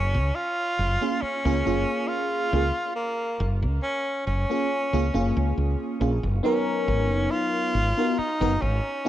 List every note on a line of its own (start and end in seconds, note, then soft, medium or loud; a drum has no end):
0.00 0.16 F#1 loud
0.00 0.37 C#4 loud
0.14 0.31 C#2 loud
0.35 1.23 F4 loud
0.79 0.96 F#1 medium
1.01 1.18 A#3 medium
1.01 1.18 C#4 medium
1.01 1.19 F4 medium
1.01 1.19 G#4 medium
1.21 2.09 C#4 loud
1.21 muted fretless electric bass stroke soft
1.45 1.61 C#2 loud
1.45 1.55 A#3 medium
1.45 1.56 C#4 medium
1.45 1.56 F4 medium
1.45 1.56 G#4 loud
1.65 1.83 F#1 medium
1.65 2.48 A#3 medium
1.65 2.48 C#4 medium
1.65 2.48 F4 medium
1.65 2.48 G#4 medium
2.08 2.95 F4 loud
2.53 2.70 C#2 medium
2.53 2.64 A#3 medium
2.53 2.64 C#4 medium
2.53 2.65 F4 medium
2.53 2.65 G#4 medium
2.96 3.53 A#3 loud
3.40 3.64 F#1 loud
3.62 3.78 C#2 loud
3.82 4.23 C#4 loud
4.26 4.44 F#1 medium
4.26 5.96 C#4 loud
4.50 4.66 A#3 medium
4.50 4.66 C#4 medium
4.50 4.67 F4 medium
4.50 4.67 G#4 medium
4.93 5.09 C#2 medium
4.93 5.03 A#3 medium
4.93 5.04 C#4 medium
4.93 5.04 F4 medium
4.93 5.04 G#4 loud
5.14 5.31 F#1 medium
5.14 5.96 A#3 medium
5.14 5.96 C#4 medium
5.14 5.96 F4 medium
5.14 5.96 G#4 loud
5.37 5.53 C#2 medium
5.58 5.75 C#2 medium
6.00 6.18 A#1 loud
6.00 6.12 A#3 medium
6.00 6.12 C#4 medium
6.00 6.12 F4 medium
6.00 6.13 G#4 medium
6.23 6.39 F#1 loud
6.43 7.75 F#3 medium
6.43 7.74 B3 loud
6.43 7.32 C#4 loud
6.43 7.75 D#4 medium
6.43 7.76 A#4 loud
6.88 7.11 G#1 loud
7.11 7.26 F#1 loud
7.31 8.20 F4 loud
7.75 7.92 G#1 medium
7.97 8.14 B3 medium
7.97 8.14 D#4 medium
7.97 8.14 F#4 medium
7.97 8.15 A#4 medium
8.18 8.63 D#4 loud
8.18 muted fretless electric bass stroke soft
8.40 8.57 F#1 loud
8.40 8.51 B3 medium
8.40 8.51 D#4 medium
8.40 8.52 F#4 medium
8.40 8.52 A#4 medium
8.61 8.79 G#1 loud
8.61 9.09 C#4 medium
9.05 9.09 B3 medium
9.05 9.09 D#4 medium